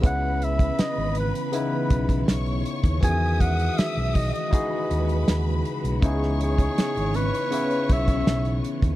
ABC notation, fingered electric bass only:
X:1
M:4/4
L:1/16
Q:1/4=80
K:C#m
V:1 name="Fingered electric bass" clef=bass
C,,4 z G,,,2 z3 B,,,2 B,,,2 z D,, | E,,4 z B,,,2 z3 D,,2 D,,2 z B,,, | C,,4 z G,,,2 z3 B,,,2 B,,,2 z D,, |]